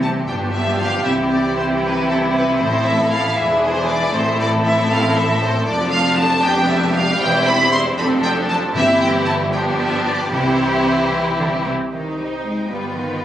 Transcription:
Already playing: C2 C3 E3 C4 G4
0.02 A5
0.28 G1 G2 F3 B3 D4 G5
0.54 E5
0.79 F5
1.04 C2 C3 E3 C4 E4 E5
1.32 D5
1.57 C5
1.82 B4
2.09 A4
2.34 B4
2.59 A1 A2 A4 C5
2.84 E5
3.12 F5
3.38 E1 E2 D4 G#4 E5
3.63 C5
3.89 D5
4.14 A1 A2 E3 C4 E4 A4 C5
4.41 D5
4.66 E5
4.92 F5
5.16 E5
5.42 C5
5.67 F1 F2 F3 A3 D4 D5
5.92 F5
6.18 A5
6.43 G3 B3 G4 G5
6.69 E5
6.95 F5
7.20 E1 E2 C4 E4 C5 G5
7.46 B5
7.72 C6
7.98 F1 F2 F3 D4 A4 B5
8.24 G5
8.50 A5
8.74 G1 G2 E3 C4 E4 G4 E5
9.01 G5
9.26 A5
9.51 F3 B3 D4 G4 G5
9.78 E5
10.05 D5
10.31 C2 C3 E3 C4 E4 G4 C5
11.12 E3
11.39 D3
11.66 C3
11.92 C2 D#3 D#4 C5 G5
12.18 G3
12.44 G#3
12.70 G1 G3 B3 F4 B4
12.97 D#3

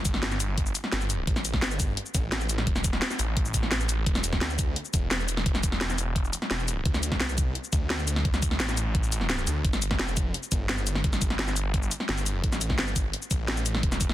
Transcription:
Already playing: G1
0.05 kick, closed hi-hat, shaker
0.14 snare
0.23 snare, closed hi-hat
0.31 snare, shaker
0.40 closed hi-hat, shaker
0.58 kick, closed hi-hat
0.66 shaker
0.75 closed hi-hat, shaker
0.84 snare
0.92 G1, snare, closed hi-hat
1.01 shaker
1.10 closed hi-hat, shaker
1.27 A1, kick, closed hi-hat
1.36 snare, shaker
1.45 closed hi-hat, shaker
1.54 kick, snare
1.62 G1, snare, closed hi-hat
1.71 shaker
1.80 kick, closed hi-hat, shaker
1.97 closed hi-hat
2.06 shaker
2.15 A1, kick, closed hi-hat, shaker
2.32 snare, closed hi-hat
2.41 shaker
2.49 closed hi-hat, shaker
2.58 snare
2.67 E1, kick, closed hi-hat
2.76 snare, shaker
2.84 kick, closed hi-hat, shaker
2.93 snare
3.02 snare, closed hi-hat
3.11 snare, shaker
3.19 A1, closed hi-hat, shaker
3.37 kick, closed hi-hat
3.45 shaker
3.54 A1, kick, closed hi-hat, shaker
3.63 snare
3.72 snare, closed hi-hat
3.80 shaker
3.89 closed hi-hat, shaker
4.06 E1, kick, closed hi-hat
4.15 snare, shaker
4.24 closed hi-hat, shaker
4.33 kick, snare
4.41 D2, snare, closed hi-hat
4.50 shaker
4.59 kick, closed hi-hat, shaker
4.76 closed hi-hat
4.85 shaker
4.94 E1, kick, closed hi-hat, shaker
5.11 snare, closed hi-hat
5.20 shaker
5.29 closed hi-hat, shaker
5.37 snare
5.46 E1, kick, closed hi-hat
5.55 snare, shaker
5.63 kick, closed hi-hat, shaker
5.72 snare
5.81 snare, closed hi-hat
5.90 snare, shaker
5.98 closed hi-hat, shaker
6.16 kick, closed hi-hat
6.25 shaker
6.33 closed hi-hat, shaker
6.42 snare
6.51 E1, snare, closed hi-hat
6.59 shaker
6.68 closed hi-hat, shaker
6.85 D2, kick, closed hi-hat
6.94 snare, shaker
7.03 closed hi-hat, shaker
7.12 kick, snare
7.20 C2, snare, closed hi-hat
7.29 shaker
7.38 kick, closed hi-hat, shaker
7.55 closed hi-hat
7.64 shaker
7.73 D2, kick, closed hi-hat, shaker
7.90 snare, closed hi-hat
7.99 shaker
8.08 closed hi-hat, shaker
8.16 snare
8.25 D2, kick, closed hi-hat
8.34 snare, shaker
8.42 kick, closed hi-hat, shaker
8.51 snare
8.60 A1, snare, closed hi-hat
8.69 snare, shaker
8.77 closed hi-hat, shaker
8.95 kick, closed hi-hat
9.03 shaker
9.12 closed hi-hat, shaker
9.21 snare
9.30 snare, closed hi-hat
9.38 shaker
9.47 D2, closed hi-hat, shaker
9.65 G1, kick, closed hi-hat
9.73 snare, shaker
9.82 closed hi-hat, shaker
9.91 kick, snare
9.99 F1, snare, closed hi-hat
10.08 shaker
10.17 kick, closed hi-hat, shaker
10.34 closed hi-hat
10.43 shaker
10.52 G1, kick, closed hi-hat, shaker
10.69 snare, closed hi-hat
10.78 shaker
10.87 closed hi-hat, shaker
10.95 snare
11.04 G1, kick, closed hi-hat
11.13 snare, shaker
11.22 kick, closed hi-hat, shaker
11.30 snare
11.39 snare, closed hi-hat
11.48 snare, shaker
11.56 closed hi-hat, shaker
11.74 kick, closed hi-hat
11.83 shaker
11.91 closed hi-hat, shaker
12.00 snare
12.09 G1, snare, closed hi-hat
12.18 shaker
12.26 closed hi-hat, shaker
12.44 A1, kick, closed hi-hat
12.52 snare, shaker
12.61 closed hi-hat, shaker
12.70 kick, snare
12.79 G1, snare, closed hi-hat
12.87 shaker
12.96 kick, closed hi-hat, shaker
13.13 closed hi-hat
13.22 shaker
13.31 A1, kick, closed hi-hat, shaker
13.48 snare, closed hi-hat
13.57 shaker
13.66 closed hi-hat, shaker
13.75 snare
13.83 E1, kick, closed hi-hat
13.92 snare, shaker
14.01 kick, closed hi-hat, shaker
14.09 snare

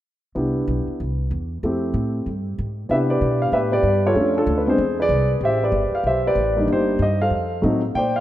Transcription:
0.35 C2 B3 D4 E4 G4
0.67 B1
0.87 muted upright bass stroke
1.00 C2
1.31 E2
1.63 F2 A3 C4 E4 G4
1.94 A2
2.26 G2
2.58 G#2
2.89 C3 B3 D4 E4 G4 B4 E5
3.10 G4 B4 D5
3.21 B2
3.42 F5
3.52 A2 G4 B4 E5
3.72 G4 B4 D5
3.83 G2
4.06 F4 A4 C#5
4.15 F2 A3 C#4 D4 F4
4.37 D4 F4 A4
4.47 D2
4.58 B4
4.67 G#3 B3 C4 D4 G#4 C5
4.78 E2
5.00 G#4 B4 D5
5.09 C2
5.41 A1 G4 C5
5.45 E5
5.63 G4 B4 D5
5.72 G1
5.92 F5, muted upright bass stroke
6.03 B1 G4 C5 E5
6.27 G4 B4 D5
6.35 A1
6.56 G3 A#3 D4 D#4
6.68 G1 D#4
6.72 G4 C5
6.99 G2 D#5
7.21 A4 C5 F5
7.30 F2
7.62 A2 F#3 A3 C4 D#4
7.95 A#2 C5 D5 G5
8.16 F5

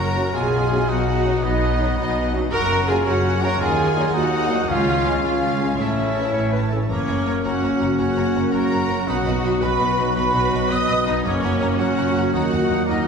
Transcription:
Already playing: F#1 F#2 C#3 C#4 F#4 A#4 C#5 A#5
0.00 A#3
0.16 F#2 C#3 F#3 A#3 C#4
0.33 B1 B2 F4 G#4 D#5 F#5 G#5
0.52 B3 D#5 F#5
0.71 F#2 F#3 B3 D#4
0.89 B1 B2 D#4 F#4 D#5 F#5
1.07 B3 D#5 F#5
1.25 F#2 F#3 B3 D#4
1.43 B1 B2 B3 D#4 D#5
1.61 F#3 D#5 F#5
1.79 F#2 F#3 B3 D#4 F#4
1.97 B1 B2 B3 D#4 D#5
2.16 D#5 F#5
2.33 F#2 F#3 B3 D#4
2.51 F#1 F#2 F#4 A#4 A#5
2.70 A#3 C#5 F#5
2.87 F#2 F#3 A#3 C#4 F4 F#4 G#4 G#5
3.05 F#1 F#2 C#4 F#4 C#5 F#5
3.23 A#3 C#5 F#5
3.41 F#2 C#3 F#3 A#3 C#4 F#4 A#4 A#5
3.59 D#2 D#3 F4 G#4 D#5 F#5 G#5
3.79 D#5 F#5
3.95 A#2 F#3 A#3 D#4 F#4
4.13 D#2 D#4 F#4 D#5 F#5
4.32 A#3 D#5 F#5
4.49 A#2 F#3 A#3 D#4
4.67 C#2 C#3 C#4 F4 F5
4.86 C#4 F5 G#5
5.05 C#3 G#3 C#4 G#4
5.23 C#2 C#4 F4 F5
5.42 C#4 F5 G#5
5.60 C#3 G#3 C#4
5.78 A1 A2 C#4 E4 C#5 E5 A5
5.97 C#4 C#5 A5
6.16 C#3 E3 A3 C#4 A4
6.33 A1 A2 C#5
6.52 C#4 B4 C#5 A5
6.71 C#3 E3 A3 C#4 A4
6.89 F#1 F#2 C#3 F#3 A#3 C#4 C#5 A#5
7.07 F#1 F#2 C#4 C#5 A#5
7.25 F#1 F#2 A#4 C#5 A#5
7.43 F#1 F#2 C#4 F#4 C#5 F#5 A#5
7.62 F#1 F#2 C#4 C#5 A#5
7.79 F#1 F#2 C#3 C#5 A#5
7.98 F#1 F#2 C#4 F#4 C#5 F#5 A#5
8.16 F#1 F#2 C#3 C#5 A#5
8.35 F#1 F#2 A#4 C#5 A#5
8.51 F#1 F#2 F#4 A#4 C#5 A#5
8.71 F#1 F#2 C#4 C#5 A#5
8.88 F#1 F#2 C#3 C#5 A#5
9.07 B1 B2 B3 D#4 F#4 D#5 F#5 B5
9.25 B1 B2 B3 D#5 B5
9.45 B1 B2 D#5 B5
9.61 B1 B2 F#4 B4 D#5 B5
9.79 B1 B2 D#5 B5
9.97 B1 B2 F#3 D#5 B5
10.15 B1 B2 F#4 B4 D#5 B5
10.33 B1 B2 F#3 D#5 B5
10.52 B1 B2 D#5 B5
10.70 B1 B2 B4 D#5 B5 D#6
10.88 B1 B2 D#5 B5
11.06 B1 B2 F#3 B3 D#4 D#5 B5
11.24 F#1 F#2 C#3 F#3 A#3 C#4 C#5 F#5 A#5
11.43 F#1 F#2 A#3 F#5 A#5
11.61 F#1 F#2 F#4 F#5 A#5
11.78 F#1 F#2 C#4 F#4 F#5 A#5
11.96 F#1 F#2 A#3 F#5 A#5
12.15 F#1 F#2 C#3 F#5 A#5
12.32 D#2 A#2 D#3 D#4 F#4 F#5 A#5
12.52 D#2 A#3 F#5 A#5
12.69 D#2 F#4 F#5 A#5
12.87 D#2 A#3 D#4 D#5 F#5 A#5

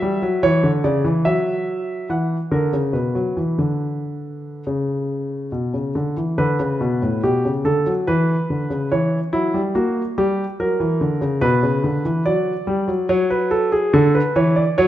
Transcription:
Already playing: E5
0.02 G3
0.22 F#3
0.43 E3 C#5
0.64 D3
0.84 C#3 D5
1.04 E3
1.25 F#3 E5
2.09 E3 F#5
2.52 D3 A#4
2.73 C#3
2.93 B2 B4
3.15 F#3
3.37 E3
3.59 D3
4.67 C#3
5.52 B2
5.74 C#3
5.95 D3
6.17 E3
6.38 D3 B4
6.60 C#3
6.81 B2
7.02 A2
7.23 B2 G4
7.45 C#3
7.65 D3 A4
7.87 F#3
8.07 E3 B4
8.50 D3
8.70 C#3
8.92 E3 C#5
9.33 F#3 E4
9.54 G3
9.75 A#3 F#4
10.18 G3 G4
10.60 F#3 A#4
10.80 E3
11.01 D3
11.21 C#3
11.41 B2 B4
11.63 C#3
11.84 D3
12.05 E3
12.26 F#3 D5
12.67 G3
12.88 F#3
13.09 F#3 C#5
13.30 B4
13.51 A4
13.72 G#4
13.94 D3 A4
14.15 B4
14.36 E3 C#5
14.56 D5
14.78 F#3 C#5

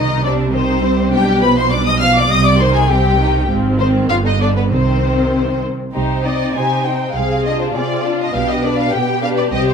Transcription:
Already playing: C2 C3 D#3 D#4 D#5
0.24 G3 C4 D4 D5
0.53 D#3 C4 D#4 C5
0.83 G3 C4
1.13 B1 B2 G3 D4 G4 G5
1.41 F3 B3 B4 B5
1.57 C5 C6
1.71 G3 D4 D5 D6
1.86 D#5 D#6
1.99 F3 B3 F5 F6
2.16 D5 D6
2.30 C2 C3 G3 C4 D#5 D#6
2.45 D5 D6
2.60 D#3 D#4 C5 C6
2.74 G#4 G#5
2.89 G3 C4 G4 G5
3.19 D#3 D#4
3.49 G#1 G#2 F3 C4
3.79 D#3 C4 C5
4.09 G1 G2 D3 B3 F4 F5
4.25 D#4 D#5
4.41 D4 D5
4.57 B3 B4
4.72 C2 C3 D#3 C4 C5
5.94 C2 C3 D#4 G4 C5
6.25 C4 D#4 D5 D#5
6.54 C3 D#4 G4 C5 G#5
6.85 C4 D#4 G5
7.15 C2 C3 C4 G#4 F5
7.45 D4 F4 D#5
7.61 C5
7.75 C3 C4 F4 G#4 D5
8.04 D4 F4
8.21 D#5
8.34 B1 B2 B3 D4 G4 F5
8.51 D#5
8.64 D4 B4 D5
8.79 F5
8.93 B2 B3 G4 G5
9.23 D4 B4 F5
9.38 D5
9.52 C2 C3 C4 G4 D#5
9.68 C5

